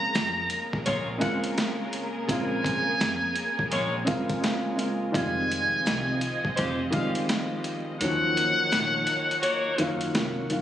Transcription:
0.00 1.11 C#3 medium
0.00 5.11 C#3 medium
0.00 1.11 G#3 medium
0.00 1.11 A#3 medium
0.00 5.11 A#3 medium
0.00 1.12 C4 medium
0.00 1.12 F4 loud
0.00 5.11 G#4 medium
0.00 5.11 A#4 medium
0.00 0.81 A#5 loud
0.15 0.45 F2 loud
0.15 snare loud
0.15 closed hi-hat medium
0.15 tambourine medium
0.50 closed hi-hat medium
0.73 kick medium
0.86 1.18 A#1 loud
0.86 1.08 G#3 medium
0.86 1.08 F4 loud
0.86 1.09 C#5 loud
0.86 kick loud
0.86 closed hi-hat medium
1.18 2.20 C#3 loud
1.18 2.21 G#3 medium
1.18 2.21 A#3 medium
1.18 2.21 C4 medium
1.18 2.22 F4 loud
1.18 1.41 F#5 medium
1.18 closed hi-hat medium
1.22 kick loud
1.44 closed hi-hat medium
1.58 snare loud
1.58 closed hi-hat medium
1.58 tambourine medium
1.93 closed hi-hat medium
2.28 2.79 A#1 loud
2.28 3.96 C#3 medium
2.28 3.96 G#3 medium
2.28 3.96 A#3 medium
2.28 3.97 C4 medium
2.28 3.97 F4 loud
2.28 3.90 G#5 loud
2.28 kick loud
2.28 closed hi-hat loud
2.64 kick loud
2.64 closed hi-hat medium
3.00 3.31 F2 medium
3.00 snare loud
3.00 closed hi-hat medium
3.00 tambourine medium
3.36 closed hi-hat medium
3.59 kick medium
3.71 4.03 A#1 loud
3.71 3.94 G#3 medium
3.71 3.94 F4 medium
3.71 3.94 C#5 loud
3.71 closed hi-hat medium
4.05 4.39 C#3 loud
4.05 4.39 G#3 medium
4.05 4.40 A#3 medium
4.05 4.40 C4 medium
4.05 4.41 F4 loud
4.05 kick loud
4.05 closed hi-hat medium
4.29 kick loud
4.29 closed hi-hat medium
4.40 4.74 C#3 medium
4.40 4.74 G#3 medium
4.40 4.75 A#3 medium
4.40 4.76 C4 medium
4.40 4.76 F4 medium
4.40 snare loud
4.40 closed hi-hat medium
4.40 tambourine medium
4.75 5.10 C#3 medium
4.75 5.11 G#3 medium
4.75 5.11 A#3 medium
4.75 5.11 C4 medium
4.75 5.12 F4 medium
4.75 closed hi-hat medium
5.11 5.64 F1 loud
5.11 6.80 D#3 medium
5.11 7.97 F3 medium
5.11 6.81 G3 medium
5.11 6.81 G#3 medium
5.11 6.82 C4 medium
5.11 7.97 C4 medium
5.11 6.82 F4 loud
5.11 7.97 F4 medium
5.11 7.97 D#5 medium
5.11 6.53 G#5 loud
5.11 kick loud
5.11 closed hi-hat loud
5.52 closed hi-hat medium
5.86 6.17 C2 loud
5.86 snare loud
5.86 closed hi-hat medium
5.86 tambourine medium
6.21 closed hi-hat medium
6.45 kick medium
6.57 6.89 F1 loud
6.57 6.79 G#3 loud
6.57 6.79 G4 medium
6.57 6.79 C5 loud
6.57 kick loud
6.57 closed hi-hat medium
6.91 7.92 D#3 loud
6.91 7.93 G3 medium
6.91 7.93 G#3 medium
6.91 7.93 C4 medium
6.91 7.94 F4 loud
6.91 7.13 F5 medium
6.91 kick loud
6.91 closed hi-hat medium
7.15 closed hi-hat medium
7.29 snare loud
7.29 closed hi-hat medium
7.29 tambourine medium
7.64 closed hi-hat medium
8.00 8.50 D#2 loud
8.00 9.68 D#3 medium
8.00 10.62 D#3 medium
8.00 9.69 F#3 medium
8.00 10.62 A#3 medium
8.00 9.69 A#3 medium
8.00 9.69 C#4 medium
8.00 10.62 D#4 medium
8.00 10.62 C#5 loud
8.00 9.61 F#5 loud
8.00 closed hi-hat loud
8.04 9.70 F3 medium
8.37 closed hi-hat medium
8.72 9.02 A#1 loud
8.72 snare loud
8.72 closed hi-hat medium
8.72 tambourine medium
9.07 closed hi-hat medium
9.31 closed hi-hat medium
9.42 9.92 A#3 loud
9.42 9.92 F#4 loud
9.42 9.92 C#5 loud
9.42 closed hi-hat medium
9.78 10.10 F#1 medium
9.78 10.12 D#3 loud
9.78 10.12 F#3 medium
9.78 10.12 A#3 medium
9.78 10.13 C#4 medium
9.78 10.13 F4 loud
9.78 closed hi-hat medium
10.01 closed hi-hat medium
10.14 10.45 C2 medium
10.14 10.47 D#3 medium
10.14 10.48 F#3 medium
10.14 10.48 A#3 medium
10.14 10.49 C#4 medium
10.14 10.49 F4 medium
10.14 snare loud
10.14 closed hi-hat medium
10.14 tambourine medium
10.50 10.62 B1 loud
10.50 10.62 D#3 medium
10.50 10.62 F#3 medium
10.50 10.62 A#3 medium
10.50 10.62 C#4 medium
10.50 10.62 F4 medium
10.50 closed hi-hat medium

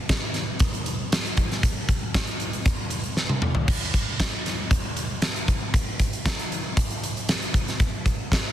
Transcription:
0.09 kick medium
0.09 snare loud
0.09 closed hi-hat loud
0.34 snare soft
0.34 closed hi-hat medium
0.59 kick loud
0.59 closed hi-hat loud
0.74 closed hi-hat soft
0.86 closed hi-hat medium
1.12 snare loud
1.12 closed hi-hat loud
1.26 closed hi-hat soft
1.37 kick medium
1.37 closed hi-hat medium
1.52 snare soft
1.52 closed hi-hat soft
1.63 kick loud
1.63 closed hi-hat loud
1.89 kick medium
1.89 closed hi-hat medium
2.14 kick medium
2.14 snare loud
2.14 closed hi-hat loud
2.27 closed hi-hat medium
2.40 closed hi-hat medium
2.53 closed hi-hat medium
2.66 kick loud
2.66 closed hi-hat loud
2.90 closed hi-hat medium
3.04 closed hi-hat soft
3.17 snare medium
3.29 high tom medium
3.42 mid tom medium
3.55 floor tom loud
3.68 kick loud
3.68 crash loud
3.94 kick medium
3.94 closed hi-hat medium
4.20 kick medium
4.20 snare loud
4.20 closed hi-hat loud
4.46 snare soft
4.46 closed hi-hat medium
4.71 kick loud
4.71 closed hi-hat loud
4.97 closed hi-hat medium
5.22 snare loud
5.22 closed hi-hat loud
5.36 closed hi-hat soft
5.48 kick medium
5.48 closed hi-hat medium
5.74 kick loud
5.74 closed hi-hat loud
6.00 kick medium
6.00 closed hi-hat medium
6.13 closed hi-hat medium
6.26 kick loud
6.26 snare loud
6.26 closed hi-hat loud
6.39 closed hi-hat medium
6.52 closed hi-hat medium
6.77 kick loud
6.77 closed hi-hat loud
6.90 closed hi-hat medium
7.04 closed hi-hat loud
7.17 closed hi-hat medium
7.29 snare loud
7.29 closed hi-hat loud
7.42 closed hi-hat medium
7.54 kick medium
7.54 closed hi-hat medium
7.68 snare soft
7.68 closed hi-hat medium
7.80 kick loud
7.80 closed hi-hat loud
8.06 kick medium
8.06 closed hi-hat medium
8.32 kick medium
8.32 snare loud
8.32 closed hi-hat loud

